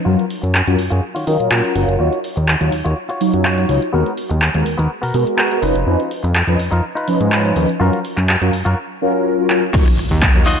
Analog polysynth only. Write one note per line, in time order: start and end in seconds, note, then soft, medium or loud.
0.06 0.18 F#3 medium
0.06 0.18 C#4 medium
0.06 0.18 F4 medium
0.06 0.18 A#4 loud
0.67 0.78 F#3 medium
0.67 0.78 C#4 medium
0.67 0.78 F4 medium
0.67 0.78 A#4 medium
1.27 1.37 F#3 medium
1.27 1.37 C#4 medium
1.27 1.37 F4 medium
1.27 1.37 A#4 loud
1.39 1.49 F#3 medium
1.39 1.50 C#4 medium
1.39 1.50 F4 medium
1.39 1.50 A#4 loud
1.51 1.72 F#3 medium
1.51 1.73 C#4 medium
1.51 1.73 F4 medium
1.75 1.93 F#3 loud
1.75 1.94 C#4 medium
1.75 1.94 F4 medium
1.75 1.94 A#4 loud
2.00 2.11 F#3 medium
2.00 2.12 D#4 medium
2.00 2.12 F4 medium
2.00 2.12 C#5 loud
2.61 2.71 F#3 medium
2.61 2.71 D#4 medium
2.61 2.72 F4 medium
2.61 2.72 C#5 medium
3.21 3.32 F#3 medium
3.21 3.32 D#4 medium
3.21 3.32 F4 medium
3.21 3.32 C#5 loud
3.33 3.54 F#3 medium
3.33 3.55 D#4 medium
3.33 3.55 F4 medium
3.33 3.55 C#5 medium
3.57 3.66 F#3 medium
3.57 3.66 D#4 medium
3.57 3.67 F4 medium
3.57 3.67 C#5 medium
3.69 3.81 F#3 medium
3.69 3.81 D#4 medium
3.69 3.81 F4 medium
3.69 3.81 C#5 loud
3.92 4.05 G#3 medium
3.92 4.05 B3 medium
3.92 4.05 F#4 medium
3.92 4.05 A#4 medium
4.54 4.65 G#3 medium
4.54 4.65 B3 medium
4.54 4.65 F#4 medium
4.54 4.65 A#4 medium
5.14 5.25 G#3 medium
5.14 5.25 B3 medium
5.14 5.25 F#4 medium
5.14 5.25 A#4 loud
5.27 5.48 G#3 medium
5.27 5.48 B3 medium
5.27 5.48 F#4 medium
5.27 5.48 A#4 medium
5.51 5.60 G#3 medium
5.51 5.60 B3 medium
5.51 5.60 F#4 medium
5.51 5.60 A#4 medium
5.62 5.74 F3 medium
5.62 5.74 C#4 medium
5.62 5.75 D#4 medium
5.62 5.75 B4 medium
5.86 5.98 F3 medium
5.86 5.99 C#4 medium
5.86 5.99 D#4 medium
5.86 5.99 B4 loud
6.48 6.59 F3 medium
6.48 6.59 C#4 medium
6.48 6.59 D#4 medium
6.48 6.59 B4 medium
7.07 7.18 F3 medium
7.07 7.19 C#4 medium
7.07 7.19 D#4 medium
7.07 7.19 B4 loud
7.20 7.42 F3 medium
7.20 7.42 B4 medium
7.44 7.53 F3 medium
7.44 7.53 C#4 medium
7.44 7.53 D#4 medium
7.44 7.54 B4 medium
7.56 7.68 F3 medium
7.56 7.68 C#4 medium
7.56 7.68 D#4 medium
7.56 7.68 B4 loud
7.80 7.92 F#3 medium
7.80 7.92 C#4 medium
7.80 7.92 F4 medium
7.80 7.92 A#4 loud
8.41 8.52 F#3 medium
8.41 8.52 C#4 medium
8.41 8.52 F4 medium
8.41 8.52 A#4 medium
9.01 9.12 F#3 medium
9.01 9.12 C#4 medium
9.01 9.12 F4 medium
9.01 9.13 A#4 loud
9.14 9.35 F#3 medium
9.14 9.35 C#4 medium
9.14 9.35 F4 medium
9.14 9.36 A#4 medium
9.38 9.47 F#3 medium
9.38 9.47 C#4 medium
9.38 9.47 F4 medium
9.38 9.47 A#4 medium
9.49 9.61 F#3 medium
9.49 9.61 C#4 medium
9.49 9.62 F4 medium
9.49 9.62 A#4 loud
9.73 9.85 F#3 medium
9.73 9.86 D#4 medium
9.73 9.86 F4 medium
9.73 9.86 C#5 loud
10.35 10.45 F#3 medium
10.35 10.45 D#4 medium
10.35 10.46 F4 medium
10.35 10.46 C#5 medium